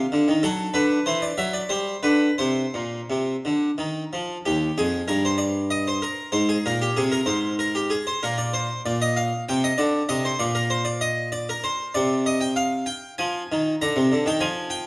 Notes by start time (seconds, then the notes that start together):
Already playing: F5
0.12 D3
0.28 D#3
0.43 F#3 A4
0.74 D3 B4
1.06 E3 C5
1.22 D5
1.38 F#3 E5
1.53 D5
1.69 G3 C5
2.03 D3 B4
2.38 C3 C5
2.74 A#2
3.10 C3
3.45 D3
3.78 D#3
4.13 F3
4.46 D#2 G4
4.78 F2 G#4
5.08 G2 A#4
5.25 C5
5.38 D5
5.70 D#5
5.87 C5
6.02 A#4
6.32 G#2 C5
6.49 G#4
6.66 A#2 A#4
6.82 G4
6.97 C3 G#4
7.12 A#4
7.26 G#2 C5
7.59 A#4
7.75 G4
7.90 G#4
8.07 C5
8.23 A#2 A#4
8.38 D5
8.53 C5
8.86 A#2 D5
9.02 D#5
9.16 F5
9.49 C3 G5
9.64 D#5
9.78 D3 D5
10.09 C3 D#5
10.25 C5
10.39 A#2 D5
10.55 A#4
10.70 C5
10.85 D5
11.01 D#5
11.32 D5
11.49 A#4
11.64 C5
11.95 C3 D5
12.26 D#5
12.41 G5
12.56 F5
12.86 G5
13.18 F3 G#5
13.52 D#3
13.82 D3 A#5
13.96 C3
14.12 D3
14.26 D#3 G5
14.40 F3 G#5
14.70 G5